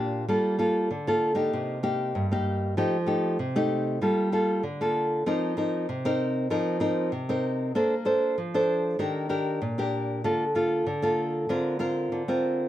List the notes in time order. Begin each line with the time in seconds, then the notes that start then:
Already playing: A#2 A#3 D4 G4
0.28 G3 A#3 F4 A4
0.59 A#3 F4 A4
0.91 D3
1.07 A#3 F4 A4
1.35 A#3 D#4 G4
1.53 C3
1.83 A#3 D#4 G4
2.15 G2
2.32 A#3 D#4 G4
2.77 F3 A3 D#4 G4
3.06 A3 D#4 G4
3.39 C3
3.56 A3 D#4 G4
4.01 G3 A#3 F4 A4
4.32 A#3 F4 A4
4.63 D3
4.81 A#3 F4 A4
5.26 F3 C4 D#4 A#4
5.57 C4 D#4 A#4
5.89 C3
6.05 C4 D#4 A#4
6.50 F3 C4 D#4 A#4
6.80 C4 D#4 A#4
7.12 C3
7.29 C4 D#4 A#4
7.75 A#3 D4 A4 C5
8.05 D4 A4 C5
8.38 F3
8.54 D4 A4 C5
8.99 D#3 D4 G4 A#4
9.29 D4 G4 A#4
9.62 A#2
9.78 D4 G4 A#4
10.24 D3 A#3 F4 A4
10.55 A#3 F4 A4
10.87 D3
11.02 A#3 F4 A4
11.49 D3 C4 F4 A#4
11.79 C4 F4 A#4
12.12 D3
12.28 C4 F4 A#4